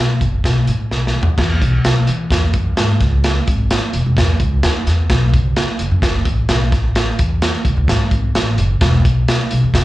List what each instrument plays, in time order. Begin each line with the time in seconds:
0.00 upright bass B2
0.21 upright bass F#1, kick, closed hi-hat
0.44 upright bass B2, kick, snare, closed hi-hat
0.67 upright bass A2, closed hi-hat
0.91 upright bass B1, snare
1.07 snare
1.15 upright bass D#2
1.23 floor tom
1.38 upright bass E2, kick, snare, crash
1.62 upright bass B1, kick, closed hi-hat
1.84 upright bass B1, snare, closed hi-hat
2.07 upright bass E3, closed hi-hat
2.31 upright bass E2, kick, snare, closed hi-hat
2.54 upright bass F#2, kick, closed hi-hat
2.77 upright bass G#2, snare, closed hi-hat
3.00 upright bass C#2, kick, snare, closed hi-hat
3.24 snare, closed hi-hat
3.47 upright bass G#1, kick, closed hi-hat
3.71 snare, closed hi-hat
3.93 upright bass E1, closed hi-hat
4.06 upright bass E1
4.17 upright bass E2, kick, snare, closed hi-hat
4.40 upright bass C#2, kick, closed hi-hat
4.63 upright bass D#2, snare, closed hi-hat
4.87 upright bass E2, snare, closed hi-hat
5.10 upright bass B1, kick, snare, closed hi-hat
5.34 upright bass F#1, kick, closed hi-hat
5.56 snare, closed hi-hat
5.79 upright bass F#1, closed hi-hat
5.91 upright bass F#2
6.02 upright bass F#1, kick, snare, closed hi-hat
6.25 upright bass A1, kick, closed hi-hat
6.49 upright bass B1, snare, closed hi-hat
6.72 upright bass A1, kick, snare, closed hi-hat
6.95 snare, closed hi-hat
7.19 upright bass E2, kick, closed hi-hat
7.42 snare, closed hi-hat
7.65 upright bass C#2, kick, closed hi-hat
7.77 upright bass C#2
7.88 upright bass G#2, kick, snare, closed hi-hat
8.11 upright bass G#1, kick, closed hi-hat
8.35 upright bass A1, snare, closed hi-hat
8.58 upright bass F#1, closed hi-hat
8.81 upright bass E1, kick, snare, closed hi-hat
9.05 upright bass B1, kick, closed hi-hat
9.28 snare, closed hi-hat
9.51 upright bass B1, closed hi-hat
9.64 upright bass E2
9.74 upright bass E1, kick, snare, closed hi-hat